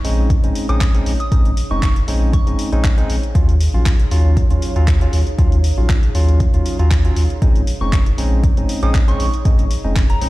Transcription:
Already playing: ambient pad D#4 G#4 C#5 F5
0.04 analog synth bass A#1, tine electric piano G#3 C4 C#4 D#4, open hi-hat
0.30 kick, closed hi-hat
0.44 analog synth bass A#1, tine electric piano G#3 C4 C#4 D#4, closed hi-hat
0.55 open hi-hat
0.69 analog synth bass A#1, tine electric piano G#3 C4 C#4 D#4, synth bell D#6, closed hi-hat
0.81 kick, clap, closed hi-hat
0.94 tine electric piano G#3 C4 C#4 D#4, closed hi-hat
1.06 analog synth bass A#1, open hi-hat
1.20 synth bell D#6, closed hi-hat
1.32 analog synth bass A#1, tine electric piano G#3 C4 C#4 D#4, kick, closed hi-hat
1.45 closed hi-hat
1.57 open hi-hat
1.71 analog synth bass F1, tine electric piano G#3 C4 C#4 D#4, synth bell C#6
1.83 synth bell C#6, kick, clap, closed hi-hat
1.96 closed hi-hat
2.08 analog synth bass A#1, tine electric piano G#3 C4 C#4 D#4, open hi-hat
2.33 synth bell C#6, kick, closed hi-hat
2.47 analog synth bass A#1, tine electric piano G#3 C4 C#4 D#4, closed hi-hat
2.59 open hi-hat
2.72 analog synth bass A#1, tine electric piano G#3 C4 C#4 D#4, closed hi-hat
2.84 kick, clap, closed hi-hat
2.98 tine electric piano G#3 C4 C#4 D#4, closed hi-hat
3.10 analog synth bass A#1, open hi-hat
3.23 closed hi-hat
3.35 analog synth bass D#2, tine electric piano F#3 C#4 F4, kick, closed hi-hat
3.49 closed hi-hat
3.61 open hi-hat
3.74 analog synth bass A#1, tine electric piano F#3 C#4 F4
3.86 kick, clap, closed hi-hat
4.00 closed hi-hat
4.11 analog synth bass D#2, tine electric piano F#3 C#4 F4, open hi-hat
4.37 kick, closed hi-hat
4.50 analog synth bass D#2, tine electric piano F#3 C#4 F4, closed hi-hat
4.62 open hi-hat
4.76 analog synth bass D#2, tine electric piano F#3 C#4 F4, closed hi-hat
4.88 kick, clap, closed hi-hat
5.01 tine electric piano F#3 C#4 F4, closed hi-hat
5.13 analog synth bass D#2, open hi-hat
5.27 closed hi-hat
5.38 analog synth bass D#2, tine electric piano F#3 C#4 F4, kick, closed hi-hat
5.52 closed hi-hat
5.64 open hi-hat
5.78 analog synth bass A#1, tine electric piano F#3 C#4 F4
5.89 kick, clap, closed hi-hat
6.03 closed hi-hat
6.15 analog synth bass D#2, tine electric piano F#3 C#4 F4, open hi-hat
6.28 closed hi-hat
6.40 kick, closed hi-hat
6.54 analog synth bass D#2, tine electric piano F#3 C#4 F4, closed hi-hat
6.66 open hi-hat
6.79 analog synth bass D#2, tine electric piano F#3 C#4 F4, closed hi-hat
6.91 kick, clap, closed hi-hat
7.05 tine electric piano F#3 C#4 F4, closed hi-hat
7.16 analog synth bass D#2, open hi-hat
7.30 closed hi-hat
7.42 analog synth bass A#1, tine electric piano G#3 C4 C#4 D#4, kick, closed hi-hat
7.56 closed hi-hat
7.67 open hi-hat
7.81 analog synth bass F1, tine electric piano G#3 C4 C#4 D#4, synth bell C#6
7.93 kick, clap, closed hi-hat
8.06 closed hi-hat
8.18 analog synth bass A#1, tine electric piano G#3 C4 C#4 D#4, open hi-hat
8.44 kick, closed hi-hat
8.57 analog synth bass A#1, tine electric piano G#3 C4 C#4 D#4, closed hi-hat
8.69 open hi-hat
8.83 analog synth bass A#1, tine electric piano G#3 C4 C#4 D#4, synth bell D#6, closed hi-hat
8.94 kick, clap, closed hi-hat
9.08 tine electric piano G#3 C4 C#4 D#4, synth bell C#6, closed hi-hat
9.20 analog synth bass A#1, open hi-hat
9.34 closed hi-hat
9.45 analog synth bass A#1, tine electric piano G#3 C4 C#4 D#4, kick, closed hi-hat
9.59 closed hi-hat
9.71 open hi-hat
9.84 analog synth bass F1, tine electric piano G#3 C4 C#4 D#4
9.96 kick, clap, closed hi-hat
10.10 synth bell A#5, closed hi-hat
10.22 analog synth bass A#1, tine electric piano G#3 C4 C#4 D#4, open hi-hat

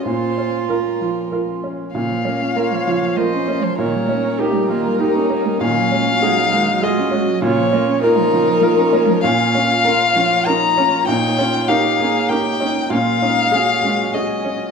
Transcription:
Already playing: string section C#4
0.05 grand piano A#2, string section A#3 F4, cello F4, violin C5
0.38 grand piano C#4
0.68 grand piano F4 A#4, violin A#4
1.01 grand piano F3
1.32 grand piano F4 A#4
1.64 grand piano C#4
1.94 grand piano A#2, cello C#3, string section A#3 C#4 F4, violin F5
2.10 cello F3
2.25 cello A#3, grand piano C#4
2.40 cello C#4
2.55 cello A#3, grand piano F4 A#4, viola C#5
2.72 cello F3
2.87 cello C#3, grand piano F3
3.02 cello F3
3.17 cello A#3, grand piano F4 A#4, viola C5, violin D#5
3.33 cello C#4
3.48 cello A#3, grand piano C#4
3.63 cello F3, violin C5
3.78 grand piano A#2, cello D#3, string section G3 D#4, viola A#4, violin C#5
3.94 cello G3
4.09 cello A#3, grand piano C#4
4.24 cello C#4
4.39 cello A#3, grand piano D#4 G4, viola G4, violin A#4
4.54 cello G3
4.69 cello D#3, grand piano A#3, viola F4
4.85 cello G3
4.99 cello A#3, grand piano D#4 G4, viola D#4
5.14 cello C#4
5.30 cello A#3, grand piano C#4
5.46 cello G3
5.60 grand piano A#2, cello D#3, string section F#3 G#3, viola C#4, violin F5
5.76 cello F#3
5.91 cello G#3, grand piano C#4
6.07 cello C#4
6.22 cello G#3, viola D#4, grand piano F#4 G#4
6.38 cello F#3
6.52 cello D#3, grand piano G#3
6.67 cello F#3
6.82 cello G#3, viola F4, grand piano F#4 G#4, violin D#5
6.98 cello C#4
7.11 cello G#3, grand piano C#4, viola F#4
7.28 cello F#3
7.42 grand piano A#2, cello C#3, string section A#3 F4 C#5, viola F4, violin C#5
7.58 cello F3
7.72 cello A#3, grand piano C#4, viola F4
7.87 cello C#4
8.02 cello A#3, viola D#4, grand piano F4 A#4, violin A#4
8.17 cello F3
8.31 cello C#3, grand piano F3
8.46 cello F3
8.61 cello A#3, grand piano F4 A#4
8.76 cello C#4
8.93 cello A#3, grand piano C#4
9.08 cello F3
9.23 grand piano A#2, cello C#4, viola C#4, violin F5
9.54 cello C#4, grand piano C#4
9.84 cello C#4, grand piano F4 A#4, viola F4
10.15 grand piano F3, cello C#4
10.45 cello C#4, viola D#4, grand piano F4 A#4, violin A#5
10.77 cello C#4, grand piano C#4, viola F4
11.07 grand piano A#2, cello C#4, viola D#4, string section D#4, violin G5
11.38 cello C#4, grand piano C#4, viola F4
11.68 cello C#4, grand piano D#4 A#4, viola G4, violin F5
12.00 grand piano A#3, cello C#4, viola G#4
12.29 cello C#4, grand piano D#4 A#4, viola G4, violin G5
12.60 grand piano C#4, cello C#4, viola D#4
12.90 grand piano A#2, string section F#3 G#3 C#4, cello C#4, viola F4, violin F5
13.21 cello C#4, grand piano C#4, viola D#4
13.51 cello C#4, viola C#4, grand piano F#4 G#4
13.82 grand piano G#3, cello C#4
14.12 cello C#4, grand piano F#4 G#4, violin D#5
14.43 cello C#4, grand piano C#4

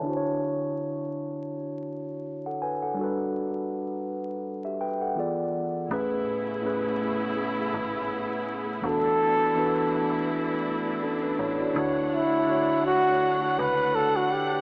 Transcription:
Already playing: tine electric piano C#5 A5
0.01 tine electric piano D3 D4
0.05 tine electric piano E4 F#4
0.10 tine electric piano C5
0.17 tine electric piano C#5
2.46 tine electric piano A4 F#5
2.62 tine electric piano B4 G#5
2.83 tine electric piano A4 F#5
2.94 tine electric piano G3 D4
2.99 tine electric piano F#4 A4
3.04 tine electric piano B4
4.65 tine electric piano G4 E5
4.81 tine electric piano B4 G5
5.01 tine electric piano A4 F#5
5.15 tine electric piano E3 B3 F4 G#4
5.20 tine electric piano D5
5.89 fm bass A1, tine electric piano A2 A3 C#4 G#4, string section C#3 A3 B3 E4 G#4
5.93 tine electric piano B4
6.62 tine electric piano A2 A3 C#4 G#4
6.66 tine electric piano B4
7.74 fm bass G#1
8.81 fm bass E1, tine electric piano E3 B3 D4 F#4, string section E3 A3 D4 E4, flugelhorn A4
8.86 tine electric piano A4
9.55 tine electric piano E3 B3 D4 F#4
9.59 tine electric piano B4
11.03 tine electric piano C#4 A4
11.23 tine electric piano D4 B4
11.39 fm bass A1, tine electric piano E4 C#5
11.60 tine electric piano F#4 D5
11.74 fm bass D2, tine electric piano D3 D4 E4 F#4, string section C#5 F#5
11.78 tine electric piano C#5
12.14 flugelhorn E4
12.46 tine electric piano D3 D4 E4 F#4
12.51 tine electric piano C#5
12.86 flugelhorn F#4
13.43 flugelhorn F#4
13.59 fm bass C#2, flugelhorn B4
13.95 flugelhorn A4
14.16 flugelhorn F#4
14.32 flugelhorn G4

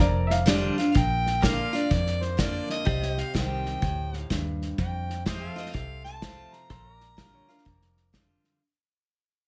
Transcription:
Already playing: harmonica A#4, pedal steel guitar A#4 D5 F5
0.00 fingered electric bass F1, steel-string acoustic guitar F2, upright piano D5
0.27 upright piano E5, snare
0.31 upright piano F5
0.46 steel-string acoustic guitar D3 G3 D4 F4, upright piano D5, snare, hi-hat pedal
0.78 steel-string acoustic guitar D4 F4, snare
0.91 steel-string acoustic guitar A#2, harmonica F5
0.95 fingered electric bass A#1, harmonica G5, kick, snare
1.26 snare
1.42 steel-string acoustic guitar D3 A#3 D4 F4, pedal steel guitar A#4 D5 F5, kick, snare, hi-hat pedal
1.46 harmonica F5
1.73 steel-string acoustic guitar D4 F4, harmonica D5, snare
1.91 steel-string acoustic guitar F2, fingered electric bass F2, kick, snare
2.06 snare
2.22 harmonica C5, snare
2.37 steel-string acoustic guitar D3 A#3 D4 F4, harmonica D5, kick, snare, hi-hat pedal
2.69 harmonica D#5, snare
2.85 fingered electric bass C2, steel-string acoustic guitar C3, pedal steel guitar G4 D5 F5, kick, snare
3.02 snare
3.12 pedal steel guitar C5 D#5
3.17 harmonica F5, snare
3.34 fingered electric bass C2, steel-string acoustic guitar D#3 G3 C4 G4, harmonica G5, kick, snare, hi-hat pedal
3.66 snare
3.82 fingered electric bass D2, steel-string acoustic guitar A2, kick, snare
4.13 snare
4.19 harmonica F5
4.30 fingered electric bass D#2, steel-string acoustic guitar G2, kick, snare, hi-hat pedal
4.62 snare
4.78 fingered electric bass F2, steel-string acoustic guitar F2, harmonica G5, kick, snare
5.10 snare
5.26 steel-string acoustic guitar F3 A3 C4 F4, pedal steel guitar G4 C5 D#5, harmonica F5, kick, snare, hi-hat pedal
5.52 steel-string acoustic guitar F4, pedal steel guitar A4 F5
5.57 steel-string acoustic guitar C4, harmonica D#5, snare
5.66 snare
5.73 fingered electric bass C2, steel-string acoustic guitar C3, harmonica F5, kick, snare
6.04 harmonica A5, snare
6.22 steel-string acoustic guitar F3 A3 C4 F4, kick, snare, hi-hat pedal
6.53 harmonica A#5, snare
6.70 fingered electric bass A#1, steel-string acoustic guitar A#2, pedal steel guitar A4 C5 F5, kick, snare
6.90 pedal steel guitar A#4
6.96 pedal steel guitar D5
7.00 snare
7.17 steel-string acoustic guitar D3 G3 D4 F4, upright piano A#4, kick, snare, hi-hat pedal
7.35 upright piano C#5
7.48 steel-string acoustic guitar D4 F4, upright piano A#4, snare
7.58 snare
7.65 fingered electric bass F1, steel-string acoustic guitar F2, kick, snare
7.81 snare
7.97 snare
8.13 steel-string acoustic guitar D3 G3 D4 F4, kick, snare, hi-hat pedal
8.44 snare

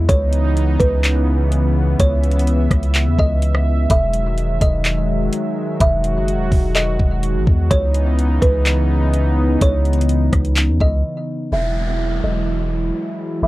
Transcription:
0.09 808-style bass C#2, analog synth pad C#3 E3 B3 D#4, kalimba C#5, kick, closed hi-hat
0.33 closed hi-hat
0.57 closed hi-hat
0.80 808-style bass C#2, kalimba B4, kick, closed hi-hat
1.04 clap, closed hi-hat
1.52 closed hi-hat
1.99 808-style bass C#2, kalimba C#5, analog synth pad E5, kick, closed hi-hat
2.23 closed hi-hat
2.31 closed hi-hat
2.39 closed hi-hat
2.47 closed hi-hat
2.71 808-style bass C#2, kick, cross-stick, closed hi-hat
2.83 closed hi-hat
2.95 clap, closed hi-hat
3.07 808-style bass E2
3.18 808-style bass C#2, kalimba D#5, kick
3.42 closed hi-hat
3.55 cross-stick
3.90 808-style bass E1, analog synth pad D#3 F#3 G#3, kalimba E5, kick, closed hi-hat
4.13 closed hi-hat
4.38 closed hi-hat
4.61 808-style bass E1, kalimba D#5, kick, closed hi-hat
4.85 clap, closed hi-hat
5.33 closed hi-hat
5.80 808-style bass E1, analog synth pad F#4, kalimba E5, kick, closed hi-hat
6.04 closed hi-hat
6.16 808-style bass F#1
6.28 closed hi-hat
6.34 808-style bass E1
6.52 808-style bass E1, kick, open hi-hat
6.75 kalimba D#5, clap, closed hi-hat
6.99 808-style bass E1, kick
7.23 closed hi-hat
7.35 808-style bass G#1
7.47 808-style bass E2, kick
7.71 808-style bass C#2, analog synth pad C#3 E3 B3 D#4, kalimba C#5, kick, closed hi-hat
7.94 closed hi-hat
8.19 closed hi-hat
8.42 808-style bass C#2, kalimba B4, kick, closed hi-hat
8.66 clap, closed hi-hat
9.14 closed hi-hat
9.61 808-style bass C#2, kalimba C#5, kick, closed hi-hat
9.85 closed hi-hat
9.93 closed hi-hat
10.01 closed hi-hat
10.09 closed hi-hat
10.33 808-style bass C#2, kick, cross-stick, closed hi-hat
10.45 closed hi-hat
10.56 clap, closed hi-hat
10.69 808-style bass E2
10.80 808-style bass C#2, kalimba D#5, kick
11.52 808-style bass E1, analog synth pad E3 F#3 G#3 E4, kalimba E5, downlifter
12.23 808-style bass E1, kalimba D#5
13.42 808-style bass E1, kalimba E5

